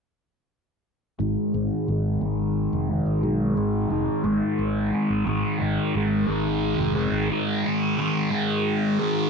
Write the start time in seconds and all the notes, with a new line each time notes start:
1.19 G#1 G#2 D#3 G#3
1.53 G#1 D#3 G#3
1.87 G#1 G#2 D#3 G#3
2.21 G#1 G#2 D#3 G#3
2.73 F1
2.89 D#3 G#3
3.06 G#1
3.22 B1 G#2 D#3 G#3
3.55 G#1 D#3 G#3
3.89 F1 G#2 D#3 G#3
4.23 G#1 G#2 D#3 G#3
4.59 G#1
4.90 D#3 G#3
5.10 G#1
5.25 G#1 G#2 D#3 G#3
5.59 G#1 D#3 G#3
5.93 G#1 G#2 D#3 G#3
6.27 G#1 G#2 D#3 G#3
6.78 F1
6.95 D#3 G#3
7.12 G#1
7.29 G#2 D#3 G#3
7.64 D#3 G#3
7.97 G#2 D#3 G#3
8.30 G#2 D#3 G#3
8.99 D#3 G#3